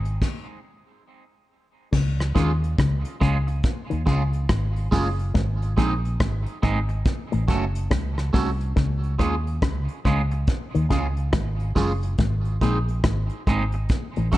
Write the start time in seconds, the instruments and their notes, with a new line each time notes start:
Already playing: fingered electric bass G#1
0.05 closed hi-hat
0.22 kick, crash
1.93 fingered electric bass C#2, clean electric guitar C#3, kick, crash
2.20 cross-stick, closed hi-hat
2.35 fingered electric bass D#2, clean electric guitar D#3 G#3 C#4 F4 G#4, kick, closed hi-hat
2.64 closed hi-hat
2.78 fingered electric bass C#2, clean electric guitar C#3, kick, cross-stick, closed hi-hat
3.05 closed hi-hat
3.20 fingered electric bass C#2, clean electric guitar C#3 G#3 C#4 F4 G#4, kick, closed hi-hat
3.47 muted clean electric guitar stroke, closed hi-hat
3.63 kick, closed hi-hat
3.90 fingered electric bass D#2, clean electric guitar D#3, closed hi-hat
4.06 fingered electric bass C#2, clean electric guitar C#3 G#3 C#4 F4 G#4, kick, closed hi-hat
4.33 closed hi-hat
4.49 fingered electric bass G#1, clean electric guitar G#2, kick, cross-stick, closed hi-hat
4.76 closed hi-hat
4.91 fingered electric bass F#1, clean electric guitar F#2 G#3 C#4 F4 G#4, kick, open hi-hat
5.19 closed hi-hat
5.34 fingered electric bass G#1, clean electric guitar G#2, kick, closed hi-hat
5.62 closed hi-hat
5.77 fingered electric bass A#1, clean electric guitar A#2 G#3 C4 D#4 G#4, kick, closed hi-hat
6.05 closed hi-hat
6.20 fingered electric bass G#1, clean electric guitar G#2, kick, cross-stick, closed hi-hat
6.46 closed hi-hat
6.62 fingered electric bass G#1, clean electric guitar G#2 G#3 C4 D#4 G#4, kick, closed hi-hat
6.89 muted clean electric guitar stroke, closed hi-hat
7.05 kick, closed hi-hat
7.32 fingered electric bass A1, clean electric guitar A2, closed hi-hat
7.48 fingered electric bass F#1, clean electric guitar F#2 A3 C#4 F#4 A4, kick, closed hi-hat
7.75 closed hi-hat
7.91 fingered electric bass C#2, clean electric guitar C#3, kick, cross-stick, closed hi-hat
8.18 cross-stick, closed hi-hat
8.33 fingered electric bass C2, clean electric guitar C3 A3 C#4 F#4 A4, kick, open hi-hat
8.61 closed hi-hat
8.76 fingered electric bass C#2, clean electric guitar C#3, kick, closed hi-hat
9.03 closed hi-hat
9.19 fingered electric bass D#2, clean electric guitar D#3 G#3 C#4 F4 G#4, kick, closed hi-hat
9.47 closed hi-hat
9.62 fingered electric bass C#2, clean electric guitar C#3, kick, cross-stick, closed hi-hat
9.88 closed hi-hat
10.05 fingered electric bass C#2, clean electric guitar C#3 G#3 C#4 F4 G#4, kick, closed hi-hat
10.31 muted clean electric guitar stroke, closed hi-hat
10.47 kick, closed hi-hat
10.75 fingered electric bass D#2, clean electric guitar D#3, closed hi-hat
10.90 fingered electric bass C#2, clean electric guitar C#3 G#3 C#4 F4 G#4, kick, closed hi-hat
11.17 closed hi-hat
11.33 fingered electric bass G#1, clean electric guitar G#2, kick, cross-stick, closed hi-hat
11.60 closed hi-hat
11.75 fingered electric bass F#1, clean electric guitar F#2 G#3 C#4 F4 G#4, kick, open hi-hat
12.03 closed hi-hat
12.18 fingered electric bass G#1, clean electric guitar G#2, kick, closed hi-hat
12.45 closed hi-hat
12.61 fingered electric bass A#1, clean electric guitar A#2 G#3 C4 D#4 G#4, kick, closed hi-hat
12.89 closed hi-hat
13.04 fingered electric bass G#1, clean electric guitar G#2, kick, cross-stick, closed hi-hat
13.30 closed hi-hat
13.47 fingered electric bass G#1, clean electric guitar G#2 G#3 C4 D#4 G#4, kick, closed hi-hat
13.72 muted clean electric guitar stroke, closed hi-hat
13.89 kick, closed hi-hat
14.16 fingered electric bass A1, clean electric guitar A2, closed hi-hat
14.32 fingered electric bass F#1, clean electric guitar F#2 A3 C#4 F#4 A4, kick, closed hi-hat